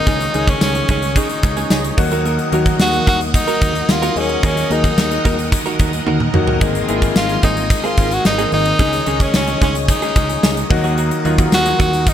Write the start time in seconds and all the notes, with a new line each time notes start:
Already playing: D#4 D#5 G#5
0.06 C#2 C#3 D#3 G#3 C#4 D#4 G#4 C#5 D#6, kick, closed hi-hat
0.21 muted clean electric guitar stroke, closed hi-hat
0.34 C#2 D#3 G#3 C#4 D#4 G#4, closed hi-hat
0.48 G#3 C#4 D#4 G#4, kick, closed hi-hat
0.61 C#2 C#4, muted clean electric guitar stroke, snare, tambourine
0.75 muted clean electric guitar stroke, closed hi-hat
0.89 C#2 G#3 C#4 D#4 G#4, kick, closed hi-hat
1.02 muted clean electric guitar stroke, closed hi-hat
1.15 C#3 G#3 C#4 D#4 G#4, kick, closed hi-hat
1.29 muted clean electric guitar stroke, closed hi-hat
1.43 C#2 G#3 C#4, muted clean electric guitar stroke, kick, closed hi-hat
1.57 G#3 C#4 D#4 G#4, closed hi-hat
1.70 C#2 G#3 C#4 D#4 G#4, snare, tambourine
1.84 muted clean electric guitar stroke, closed hi-hat
1.97 D#2 D#3 F#3 A#3 D#4 F#4 A#4 F#5, muted clean electric guitar stroke, kick, open hi-hat
2.12 A#3 D#4 F#4 A#4, closed hi-hat
2.25 A#3 D#4 F#4 A#4, closed hi-hat
2.39 muted clean electric guitar stroke, closed hi-hat
2.52 D#2 D#3 F#3 A#3 D#4 F#4 A#4, closed hi-hat
2.66 A#3 D#4 F#4 A#4, kick, closed hi-hat
2.79 D#2 F#4, snare, tambourine
2.93 muted clean electric guitar stroke, closed hi-hat
3.07 D#2 A#3 D#4 F#4 A#4, kick, closed hi-hat
3.20 muted clean electric guitar stroke, closed hi-hat
3.34 D#3 A#3 D#4, muted clean electric guitar stroke, kick, closed hi-hat
3.47 A#3 D#4 F#4 A#4, closed hi-hat
3.61 D#2 A#3 D#4 F#4 A#4, kick, closed hi-hat
3.75 muted clean electric guitar stroke, closed hi-hat
3.89 D#2 F4, muted clean electric guitar stroke, snare, tambourine
4.02 A#3 D#4 F#4 A#4, closed hi-hat
4.15 D#2 D#3 F#3 A#3 C#4 D#4 G#4, open hi-hat
4.29 muted clean electric guitar stroke, closed hi-hat
4.43 D#2 D#3 F#3 A#3 C#4 D#4 F#4 G#4 A#4, kick, closed hi-hat
4.57 muted clean electric guitar stroke, closed hi-hat
4.70 D#2 D#3 F#3 A#3 D#4 F#4 G#4 A#4, closed hi-hat
4.84 A#3 D#4 F#4 A#4, kick, closed hi-hat
4.97 D#2 D#3 A#3 D#4, muted clean electric guitar stroke, snare, tambourine
5.11 muted clean electric guitar stroke, closed hi-hat
5.25 D#2 A#3 D#4 F#4 A#4, kick, closed hi-hat
5.38 muted clean electric guitar stroke, closed hi-hat
5.51 D#3 A#3 D#4, muted clean electric guitar stroke, kick, closed hi-hat
5.66 A#3 D#4 F#4 A#4, closed hi-hat
5.79 D#2 A#3 D#4 F#4 A#4, kick, closed hi-hat
5.93 muted clean electric guitar stroke, closed hi-hat
6.06 D#2 A#3 D#4 F#4 A#4, high tom
6.20 muted clean electric guitar stroke, mid tom
6.33 D#2 D#3 F#3 A#3 D#4 F#4, muted clean electric guitar stroke, mid tom
6.47 A#3 D#4 F#4 A#4, floor tom
6.60 G#1 G#2 D#3 G#3 A#3 C4 D#4 G#4 G#5 C6, kick, closed hi-hat
6.74 muted clean electric guitar stroke, closed hi-hat
6.88 G#1 D#3 G#3 A#3 C4 E4 G#4, closed hi-hat
6.96 F4
7.02 D#3 A#3 C4 G#4, kick, closed hi-hat
7.15 G#1 G#2 D#3 G#3 F4, muted clean electric guitar stroke, snare, tambourine
7.29 muted clean electric guitar stroke, closed hi-hat
7.43 G#1 D#3 A#3 C4 D#4 G#4, kick, closed hi-hat
7.56 muted clean electric guitar stroke, closed hi-hat
7.70 G#2 D#3 G#3, muted clean electric guitar stroke, kick, closed hi-hat
7.84 D#3 A#3 C4 F4 G#4, closed hi-hat
7.97 G#1 D#3 G#3 A#3 C4 G#4, kick, closed hi-hat
8.11 F#4, muted clean electric guitar stroke, closed hi-hat
8.25 G#1 D#4, muted clean electric guitar stroke, snare, tambourine
8.38 D#3 A#3 C4 G#4, closed hi-hat
8.51 G#1 D#3 G#3 A#3 C4 D#4, muted clean electric guitar stroke, open hi-hat
8.66 muted clean electric guitar stroke, closed hi-hat
8.79 C#2 C#3 D#3 G#3 C#4 D#4 G#4 C#5 G#5 D#6, kick, closed hi-hat
8.93 muted clean electric guitar stroke, closed hi-hat
9.06 C#2 D#3 G#3 C#4 D#4 G#4, closed hi-hat
9.20 G#3 C#4 D#4 G#4, kick, closed hi-hat
9.33 C#2 C#3 G#3 C#4, muted clean electric guitar stroke, snare, tambourine
9.48 muted clean electric guitar stroke, closed hi-hat
9.61 C#2 G#3 C#4 D#4 G#4, kick, closed hi-hat
9.75 muted clean electric guitar stroke, closed hi-hat
9.88 C#3 G#3 C#4 D#4, muted clean electric guitar stroke, kick, closed hi-hat
10.02 G#3 C#4 D#4 G#4, closed hi-hat
10.15 C#2 G#3 C#4 D#4 G#4, kick, closed hi-hat
10.29 muted clean electric guitar stroke, closed hi-hat
10.43 C#2 G#3 C#4 D#4 G#4, snare, tambourine
10.57 muted clean electric guitar stroke, closed hi-hat
10.70 D#2 D#3 F#3 A#3 D#4 F#4 A#4 A#5, muted clean electric guitar stroke, kick, open hi-hat
10.84 F#3 A#3 D#4 F#4, closed hi-hat
10.97 F#3 A#3 D#4 F#4, closed hi-hat
11.11 muted clean electric guitar stroke, closed hi-hat
11.24 D#2 D#3 F#3 A#3 D#4 F4 F#4, closed hi-hat
11.38 F#3 A#3 D#4 F#4, kick, closed hi-hat
11.52 D#2 D#3 A#3 D#4 F#4, muted clean electric guitar stroke, snare, tambourine
11.65 muted clean electric guitar stroke, closed hi-hat
11.79 D#2 F#3 A#3 D#4 F#4, kick, closed hi-hat
11.93 muted clean electric guitar stroke, closed hi-hat
12.06 D#3 A#3 D#4, muted clean electric guitar stroke, kick, closed hi-hat